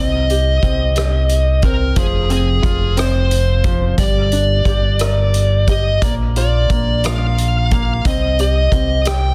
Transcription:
Already playing: C2 C4 D#5
0.30 G4, closed hi-hat
0.62 C2 C4, kick, closed hi-hat
0.96 G4, cross-stick, closed hi-hat
1.29 closed hi-hat
1.62 C4 A#4, kick, closed hi-hat
1.96 F1 F3 G#4, kick, closed hi-hat
2.30 C4 G#4, closed hi-hat
2.62 F1 F4, kick, closed hi-hat
2.97 C4 C5, cross-stick, closed hi-hat
3.31 closed hi-hat
3.64 F3, kick, closed hi-hat
3.98 G1 G3 D5, kick, closed hi-hat
4.32 D4, closed hi-hat
4.65 G1 G4, kick, closed hi-hat
4.99 A#4, cross-stick, closed hi-hat
5.34 closed hi-hat
5.67 G4 D#5, kick, closed hi-hat
6.02 A#1 A#3 D5, kick, closed hi-hat
6.36 F4 D5, closed hi-hat
6.70 A#1 A#3, kick, closed hi-hat
7.04 F4 F5, cross-stick, closed hi-hat
7.38 closed hi-hat
7.71 A#3 F5, kick, closed hi-hat
8.05 C2 C4 D#5, kick, closed hi-hat
8.39 G4 D#5, closed hi-hat
8.72 C2 C4, kick, closed hi-hat
9.05 G4 G5, cross-stick, closed hi-hat

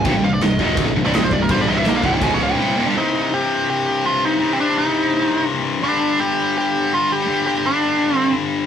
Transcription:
0.05 C1 C2 G2 G5, kick, crash
0.14 C1 C2 G2
0.23 C1 C2 G2 F5
0.34 D5
0.41 C1 C2 G2 D#5, snare, crash
0.59 D#1 D#2 A#2 D#3, kick
0.77 kick, crash
0.87 C1 C2 G2
0.94 C1 C2 G2
1.04 C1 C2 G2 C3 D5
1.14 D#5, snare, crash
1.22 C1 C2 G2 C5
1.31 C1 C2 G2 D5, kick
1.42 A#4
1.49 G1 G2 D3 G3 C5, kick, crash
1.61 D5
1.66 C1 C2 G2 C3 D#5
1.78 E5
1.85 A#1 A#2 F3 A#3 D#5, snare, crash
1.97 F5
2.03 C1 C2 G2 C3 F#5, kick
2.14 G5
2.21 C#1 C#2 G#2 C#3 G#5, kick, crash
2.34 C#5
2.43 F5
2.52 G5
2.57 C2 G2 C3
2.76 D#2 A#2
2.87 G2 D3
2.94 C2 G2 C3 D#4
3.34 G4
3.70 G4
4.06 F4
4.25 D#4
4.38 C2 G2 C3
4.53 C4
4.61 D4
4.78 D#4
5.82 G2 D3 G3 D4
6.20 G4
6.58 G4
6.94 F4
7.12 G4
7.26 G2 D3 G3
7.47 G4
7.66 D4
8.16 C4

